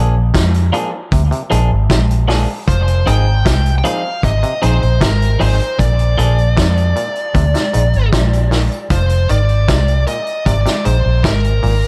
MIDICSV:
0, 0, Header, 1, 7, 480
1, 0, Start_track
1, 0, Tempo, 778210
1, 1652, Time_signature, 4, 2, 24, 8
1, 7325, End_track
2, 0, Start_track
2, 0, Title_t, "Lead electric guitar"
2, 0, Program_c, 0, 29
2, 1654, Note_on_c, 0, 72, 107
2, 1893, Note_on_c, 0, 79, 101
2, 1900, Note_off_c, 0, 72, 0
2, 2306, Note_off_c, 0, 79, 0
2, 2333, Note_on_c, 0, 79, 71
2, 2372, Note_off_c, 0, 79, 0
2, 2374, Note_on_c, 0, 77, 96
2, 2597, Note_off_c, 0, 77, 0
2, 2618, Note_on_c, 0, 75, 110
2, 2839, Note_off_c, 0, 75, 0
2, 2857, Note_on_c, 0, 72, 88
2, 3095, Note_on_c, 0, 70, 88
2, 3102, Note_off_c, 0, 72, 0
2, 3336, Note_on_c, 0, 72, 92
2, 3341, Note_off_c, 0, 70, 0
2, 3575, Note_off_c, 0, 72, 0
2, 3577, Note_on_c, 0, 74, 91
2, 4990, Note_off_c, 0, 74, 0
2, 5499, Note_on_c, 0, 72, 102
2, 5720, Note_off_c, 0, 72, 0
2, 5738, Note_on_c, 0, 74, 105
2, 6191, Note_off_c, 0, 74, 0
2, 6217, Note_on_c, 0, 75, 102
2, 6438, Note_off_c, 0, 75, 0
2, 6455, Note_on_c, 0, 74, 110
2, 6693, Note_off_c, 0, 74, 0
2, 6695, Note_on_c, 0, 72, 104
2, 6918, Note_off_c, 0, 72, 0
2, 6932, Note_on_c, 0, 70, 98
2, 7325, Note_off_c, 0, 70, 0
2, 7325, End_track
3, 0, Start_track
3, 0, Title_t, "Clean electric guitar"
3, 0, Program_c, 1, 27
3, 0, Note_on_c, 1, 53, 80
3, 0, Note_on_c, 1, 58, 81
3, 0, Note_on_c, 1, 62, 83
3, 0, Note_on_c, 1, 68, 86
3, 87, Note_off_c, 1, 53, 0
3, 89, Note_off_c, 1, 58, 0
3, 89, Note_off_c, 1, 62, 0
3, 90, Note_off_c, 1, 68, 0
3, 447, Note_on_c, 1, 53, 95
3, 450, Note_on_c, 1, 58, 96
3, 452, Note_on_c, 1, 62, 96
3, 454, Note_on_c, 1, 68, 89
3, 559, Note_off_c, 1, 68, 0
3, 562, Note_off_c, 1, 62, 0
3, 565, Note_off_c, 1, 58, 0
3, 567, Note_off_c, 1, 53, 0
3, 925, Note_on_c, 1, 53, 81
3, 928, Note_on_c, 1, 58, 87
3, 930, Note_on_c, 1, 62, 96
3, 932, Note_on_c, 1, 68, 95
3, 1046, Note_off_c, 1, 53, 0
3, 1047, Note_off_c, 1, 58, 0
3, 1049, Note_off_c, 1, 62, 0
3, 1049, Note_off_c, 1, 68, 0
3, 1405, Note_on_c, 1, 53, 76
3, 1407, Note_on_c, 1, 58, 78
3, 1410, Note_on_c, 1, 62, 92
3, 1412, Note_on_c, 1, 68, 81
3, 1526, Note_off_c, 1, 53, 0
3, 1527, Note_off_c, 1, 58, 0
3, 1529, Note_off_c, 1, 62, 0
3, 1530, Note_off_c, 1, 68, 0
3, 1887, Note_on_c, 1, 53, 70
3, 1891, Note_on_c, 1, 60, 79
3, 1893, Note_on_c, 1, 63, 79
3, 1894, Note_on_c, 1, 68, 92
3, 2007, Note_off_c, 1, 53, 0
3, 2009, Note_off_c, 1, 60, 0
3, 2010, Note_off_c, 1, 63, 0
3, 2011, Note_off_c, 1, 68, 0
3, 2369, Note_on_c, 1, 53, 86
3, 2371, Note_on_c, 1, 60, 78
3, 2373, Note_on_c, 1, 63, 85
3, 2375, Note_on_c, 1, 68, 102
3, 2483, Note_off_c, 1, 68, 0
3, 2486, Note_off_c, 1, 63, 0
3, 2488, Note_off_c, 1, 53, 0
3, 2489, Note_off_c, 1, 60, 0
3, 2848, Note_on_c, 1, 53, 74
3, 2850, Note_on_c, 1, 60, 84
3, 2853, Note_on_c, 1, 63, 82
3, 2854, Note_on_c, 1, 68, 87
3, 2968, Note_off_c, 1, 53, 0
3, 2969, Note_off_c, 1, 60, 0
3, 2970, Note_off_c, 1, 63, 0
3, 2971, Note_off_c, 1, 68, 0
3, 3326, Note_on_c, 1, 53, 77
3, 3329, Note_on_c, 1, 60, 83
3, 3331, Note_on_c, 1, 63, 83
3, 3334, Note_on_c, 1, 68, 76
3, 3447, Note_off_c, 1, 53, 0
3, 3449, Note_off_c, 1, 60, 0
3, 3450, Note_off_c, 1, 63, 0
3, 3451, Note_off_c, 1, 68, 0
3, 3809, Note_on_c, 1, 53, 82
3, 3811, Note_on_c, 1, 58, 69
3, 3813, Note_on_c, 1, 62, 80
3, 3815, Note_on_c, 1, 68, 82
3, 3929, Note_off_c, 1, 53, 0
3, 3930, Note_off_c, 1, 58, 0
3, 3931, Note_off_c, 1, 62, 0
3, 3931, Note_off_c, 1, 68, 0
3, 7325, End_track
4, 0, Start_track
4, 0, Title_t, "Clav"
4, 0, Program_c, 2, 7
4, 209, Note_on_c, 2, 48, 86
4, 279, Note_off_c, 2, 48, 0
4, 451, Note_on_c, 2, 46, 80
4, 520, Note_off_c, 2, 46, 0
4, 691, Note_on_c, 2, 48, 83
4, 760, Note_off_c, 2, 48, 0
4, 809, Note_on_c, 2, 48, 79
4, 878, Note_off_c, 2, 48, 0
4, 929, Note_on_c, 2, 44, 88
4, 999, Note_off_c, 2, 44, 0
4, 1170, Note_on_c, 2, 48, 87
4, 1240, Note_off_c, 2, 48, 0
4, 1409, Note_on_c, 2, 46, 83
4, 1480, Note_off_c, 2, 46, 0
4, 1650, Note_on_c, 2, 53, 89
4, 1720, Note_off_c, 2, 53, 0
4, 1891, Note_on_c, 2, 51, 64
4, 1961, Note_off_c, 2, 51, 0
4, 2130, Note_on_c, 2, 48, 83
4, 2200, Note_off_c, 2, 48, 0
4, 2369, Note_on_c, 2, 46, 78
4, 2439, Note_off_c, 2, 46, 0
4, 2612, Note_on_c, 2, 48, 82
4, 2681, Note_off_c, 2, 48, 0
4, 2733, Note_on_c, 2, 48, 84
4, 2800, Note_off_c, 2, 48, 0
4, 2851, Note_on_c, 2, 44, 83
4, 2921, Note_off_c, 2, 44, 0
4, 3089, Note_on_c, 2, 48, 96
4, 3160, Note_off_c, 2, 48, 0
4, 3330, Note_on_c, 2, 46, 80
4, 3400, Note_off_c, 2, 46, 0
4, 3569, Note_on_c, 2, 46, 90
4, 3640, Note_off_c, 2, 46, 0
4, 3812, Note_on_c, 2, 50, 73
4, 3882, Note_off_c, 2, 50, 0
4, 4050, Note_on_c, 2, 48, 98
4, 4120, Note_off_c, 2, 48, 0
4, 4293, Note_on_c, 2, 46, 78
4, 4362, Note_off_c, 2, 46, 0
4, 4530, Note_on_c, 2, 48, 89
4, 4600, Note_off_c, 2, 48, 0
4, 4653, Note_on_c, 2, 48, 77
4, 4721, Note_off_c, 2, 48, 0
4, 4771, Note_on_c, 2, 44, 83
4, 4841, Note_off_c, 2, 44, 0
4, 5012, Note_on_c, 2, 48, 97
4, 5082, Note_off_c, 2, 48, 0
4, 5251, Note_on_c, 2, 46, 87
4, 5321, Note_off_c, 2, 46, 0
4, 5493, Note_on_c, 2, 53, 90
4, 5562, Note_off_c, 2, 53, 0
4, 5733, Note_on_c, 2, 51, 73
4, 5803, Note_off_c, 2, 51, 0
4, 5972, Note_on_c, 2, 48, 96
4, 6042, Note_off_c, 2, 48, 0
4, 6213, Note_on_c, 2, 46, 79
4, 6282, Note_off_c, 2, 46, 0
4, 6452, Note_on_c, 2, 48, 85
4, 6522, Note_off_c, 2, 48, 0
4, 6573, Note_on_c, 2, 48, 81
4, 6641, Note_off_c, 2, 48, 0
4, 6694, Note_on_c, 2, 44, 86
4, 6763, Note_off_c, 2, 44, 0
4, 6934, Note_on_c, 2, 48, 89
4, 7003, Note_off_c, 2, 48, 0
4, 7173, Note_on_c, 2, 46, 81
4, 7243, Note_off_c, 2, 46, 0
4, 7325, End_track
5, 0, Start_track
5, 0, Title_t, "Fingered electric bass"
5, 0, Program_c, 3, 33
5, 0, Note_on_c, 3, 34, 97
5, 191, Note_off_c, 3, 34, 0
5, 215, Note_on_c, 3, 41, 95
5, 431, Note_off_c, 3, 41, 0
5, 695, Note_on_c, 3, 38, 92
5, 804, Note_off_c, 3, 38, 0
5, 937, Note_on_c, 3, 34, 88
5, 1046, Note_off_c, 3, 34, 0
5, 1060, Note_on_c, 3, 32, 83
5, 1164, Note_off_c, 3, 32, 0
5, 1175, Note_on_c, 3, 34, 92
5, 1511, Note_off_c, 3, 34, 0
5, 1654, Note_on_c, 3, 29, 90
5, 1871, Note_off_c, 3, 29, 0
5, 1899, Note_on_c, 3, 32, 93
5, 2114, Note_off_c, 3, 32, 0
5, 2137, Note_on_c, 3, 36, 102
5, 2353, Note_off_c, 3, 36, 0
5, 2614, Note_on_c, 3, 32, 92
5, 2724, Note_off_c, 3, 32, 0
5, 2860, Note_on_c, 3, 34, 83
5, 2968, Note_off_c, 3, 34, 0
5, 2982, Note_on_c, 3, 34, 77
5, 3086, Note_off_c, 3, 34, 0
5, 3095, Note_on_c, 3, 32, 84
5, 3312, Note_off_c, 3, 32, 0
5, 3337, Note_on_c, 3, 32, 80
5, 3446, Note_off_c, 3, 32, 0
5, 3575, Note_on_c, 3, 34, 102
5, 3792, Note_off_c, 3, 34, 0
5, 3820, Note_on_c, 3, 34, 99
5, 4035, Note_off_c, 3, 34, 0
5, 4058, Note_on_c, 3, 41, 91
5, 4274, Note_off_c, 3, 41, 0
5, 4534, Note_on_c, 3, 38, 99
5, 4645, Note_off_c, 3, 38, 0
5, 4780, Note_on_c, 3, 34, 80
5, 4888, Note_off_c, 3, 34, 0
5, 4902, Note_on_c, 3, 32, 90
5, 5006, Note_off_c, 3, 32, 0
5, 5016, Note_on_c, 3, 34, 97
5, 5352, Note_off_c, 3, 34, 0
5, 5494, Note_on_c, 3, 29, 100
5, 5711, Note_off_c, 3, 29, 0
5, 5740, Note_on_c, 3, 32, 87
5, 5955, Note_off_c, 3, 32, 0
5, 5977, Note_on_c, 3, 36, 98
5, 6193, Note_off_c, 3, 36, 0
5, 6456, Note_on_c, 3, 32, 93
5, 6565, Note_off_c, 3, 32, 0
5, 6700, Note_on_c, 3, 34, 84
5, 6808, Note_off_c, 3, 34, 0
5, 6820, Note_on_c, 3, 34, 86
5, 6925, Note_off_c, 3, 34, 0
5, 7179, Note_on_c, 3, 32, 86
5, 7287, Note_off_c, 3, 32, 0
5, 7325, End_track
6, 0, Start_track
6, 0, Title_t, "Muted clean electric guitar strokes"
6, 566, Note_on_c, 9, 29, 52
6, 628, Note_off_c, 9, 29, 0
6, 2491, Note_on_c, 9, 29, 43
6, 2553, Note_off_c, 9, 29, 0
6, 7325, End_track
7, 0, Start_track
7, 0, Title_t, "Drums"
7, 213, Note_on_c, 9, 36, 127
7, 214, Note_on_c, 9, 42, 97
7, 216, Note_on_c, 9, 38, 118
7, 274, Note_off_c, 9, 36, 0
7, 276, Note_off_c, 9, 42, 0
7, 278, Note_off_c, 9, 38, 0
7, 335, Note_on_c, 9, 42, 53
7, 396, Note_off_c, 9, 42, 0
7, 454, Note_on_c, 9, 42, 71
7, 516, Note_off_c, 9, 42, 0
7, 691, Note_on_c, 9, 36, 116
7, 693, Note_on_c, 9, 42, 79
7, 752, Note_off_c, 9, 36, 0
7, 754, Note_off_c, 9, 42, 0
7, 815, Note_on_c, 9, 42, 55
7, 877, Note_off_c, 9, 42, 0
7, 934, Note_on_c, 9, 42, 83
7, 995, Note_off_c, 9, 42, 0
7, 1171, Note_on_c, 9, 36, 113
7, 1174, Note_on_c, 9, 42, 80
7, 1176, Note_on_c, 9, 38, 121
7, 1233, Note_off_c, 9, 36, 0
7, 1236, Note_off_c, 9, 42, 0
7, 1238, Note_off_c, 9, 38, 0
7, 1299, Note_on_c, 9, 42, 57
7, 1360, Note_off_c, 9, 42, 0
7, 1414, Note_on_c, 9, 46, 74
7, 1416, Note_on_c, 9, 38, 64
7, 1475, Note_off_c, 9, 46, 0
7, 1477, Note_off_c, 9, 38, 0
7, 1651, Note_on_c, 9, 36, 100
7, 1652, Note_on_c, 9, 42, 81
7, 1713, Note_off_c, 9, 36, 0
7, 1714, Note_off_c, 9, 42, 0
7, 1774, Note_on_c, 9, 42, 54
7, 1835, Note_off_c, 9, 42, 0
7, 1894, Note_on_c, 9, 42, 75
7, 1955, Note_off_c, 9, 42, 0
7, 2133, Note_on_c, 9, 36, 127
7, 2134, Note_on_c, 9, 42, 99
7, 2136, Note_on_c, 9, 38, 127
7, 2195, Note_off_c, 9, 36, 0
7, 2196, Note_off_c, 9, 42, 0
7, 2198, Note_off_c, 9, 38, 0
7, 2255, Note_on_c, 9, 42, 52
7, 2317, Note_off_c, 9, 42, 0
7, 2372, Note_on_c, 9, 42, 69
7, 2434, Note_off_c, 9, 42, 0
7, 2611, Note_on_c, 9, 36, 100
7, 2613, Note_on_c, 9, 42, 84
7, 2673, Note_off_c, 9, 36, 0
7, 2675, Note_off_c, 9, 42, 0
7, 2734, Note_on_c, 9, 42, 57
7, 2795, Note_off_c, 9, 42, 0
7, 2853, Note_on_c, 9, 42, 82
7, 2914, Note_off_c, 9, 42, 0
7, 2976, Note_on_c, 9, 42, 32
7, 3038, Note_off_c, 9, 42, 0
7, 3092, Note_on_c, 9, 36, 109
7, 3095, Note_on_c, 9, 42, 86
7, 3097, Note_on_c, 9, 38, 117
7, 3154, Note_off_c, 9, 36, 0
7, 3157, Note_off_c, 9, 42, 0
7, 3159, Note_off_c, 9, 38, 0
7, 3220, Note_on_c, 9, 42, 52
7, 3281, Note_off_c, 9, 42, 0
7, 3333, Note_on_c, 9, 46, 80
7, 3395, Note_off_c, 9, 46, 0
7, 3461, Note_on_c, 9, 42, 34
7, 3522, Note_off_c, 9, 42, 0
7, 3573, Note_on_c, 9, 36, 99
7, 3574, Note_on_c, 9, 42, 90
7, 3634, Note_off_c, 9, 36, 0
7, 3636, Note_off_c, 9, 42, 0
7, 3694, Note_on_c, 9, 42, 48
7, 3756, Note_off_c, 9, 42, 0
7, 3815, Note_on_c, 9, 42, 74
7, 3877, Note_off_c, 9, 42, 0
7, 3937, Note_on_c, 9, 42, 36
7, 3998, Note_off_c, 9, 42, 0
7, 4055, Note_on_c, 9, 36, 127
7, 4056, Note_on_c, 9, 42, 97
7, 4058, Note_on_c, 9, 38, 112
7, 4116, Note_off_c, 9, 36, 0
7, 4118, Note_off_c, 9, 42, 0
7, 4120, Note_off_c, 9, 38, 0
7, 4178, Note_on_c, 9, 42, 49
7, 4239, Note_off_c, 9, 42, 0
7, 4294, Note_on_c, 9, 42, 66
7, 4356, Note_off_c, 9, 42, 0
7, 4413, Note_on_c, 9, 42, 36
7, 4474, Note_off_c, 9, 42, 0
7, 4532, Note_on_c, 9, 36, 114
7, 4533, Note_on_c, 9, 42, 85
7, 4594, Note_off_c, 9, 36, 0
7, 4595, Note_off_c, 9, 42, 0
7, 4654, Note_on_c, 9, 42, 59
7, 4659, Note_on_c, 9, 38, 62
7, 4716, Note_off_c, 9, 42, 0
7, 4721, Note_off_c, 9, 38, 0
7, 4772, Note_on_c, 9, 42, 85
7, 4834, Note_off_c, 9, 42, 0
7, 4893, Note_on_c, 9, 42, 32
7, 4955, Note_off_c, 9, 42, 0
7, 5012, Note_on_c, 9, 36, 110
7, 5015, Note_on_c, 9, 42, 82
7, 5017, Note_on_c, 9, 38, 109
7, 5074, Note_off_c, 9, 36, 0
7, 5076, Note_off_c, 9, 42, 0
7, 5079, Note_off_c, 9, 38, 0
7, 5139, Note_on_c, 9, 42, 56
7, 5201, Note_off_c, 9, 42, 0
7, 5253, Note_on_c, 9, 46, 73
7, 5255, Note_on_c, 9, 38, 62
7, 5315, Note_off_c, 9, 46, 0
7, 5317, Note_off_c, 9, 38, 0
7, 5377, Note_on_c, 9, 42, 36
7, 5439, Note_off_c, 9, 42, 0
7, 5489, Note_on_c, 9, 42, 87
7, 5492, Note_on_c, 9, 36, 103
7, 5551, Note_off_c, 9, 42, 0
7, 5553, Note_off_c, 9, 36, 0
7, 5609, Note_on_c, 9, 42, 53
7, 5671, Note_off_c, 9, 42, 0
7, 5731, Note_on_c, 9, 42, 72
7, 5792, Note_off_c, 9, 42, 0
7, 5852, Note_on_c, 9, 42, 35
7, 5914, Note_off_c, 9, 42, 0
7, 5972, Note_on_c, 9, 42, 93
7, 5974, Note_on_c, 9, 36, 127
7, 5974, Note_on_c, 9, 38, 115
7, 6034, Note_off_c, 9, 42, 0
7, 6036, Note_off_c, 9, 36, 0
7, 6036, Note_off_c, 9, 38, 0
7, 6094, Note_on_c, 9, 42, 53
7, 6156, Note_off_c, 9, 42, 0
7, 6212, Note_on_c, 9, 42, 68
7, 6274, Note_off_c, 9, 42, 0
7, 6332, Note_on_c, 9, 42, 34
7, 6394, Note_off_c, 9, 42, 0
7, 6453, Note_on_c, 9, 36, 114
7, 6455, Note_on_c, 9, 42, 88
7, 6515, Note_off_c, 9, 36, 0
7, 6517, Note_off_c, 9, 42, 0
7, 6576, Note_on_c, 9, 42, 56
7, 6581, Note_on_c, 9, 38, 61
7, 6638, Note_off_c, 9, 42, 0
7, 6643, Note_off_c, 9, 38, 0
7, 6693, Note_on_c, 9, 42, 80
7, 6754, Note_off_c, 9, 42, 0
7, 6934, Note_on_c, 9, 36, 110
7, 6935, Note_on_c, 9, 42, 80
7, 6937, Note_on_c, 9, 38, 116
7, 6995, Note_off_c, 9, 36, 0
7, 6996, Note_off_c, 9, 42, 0
7, 6999, Note_off_c, 9, 38, 0
7, 7058, Note_on_c, 9, 42, 54
7, 7120, Note_off_c, 9, 42, 0
7, 7174, Note_on_c, 9, 46, 75
7, 7236, Note_off_c, 9, 46, 0
7, 7301, Note_on_c, 9, 42, 32
7, 7325, Note_off_c, 9, 42, 0
7, 7325, End_track
0, 0, End_of_file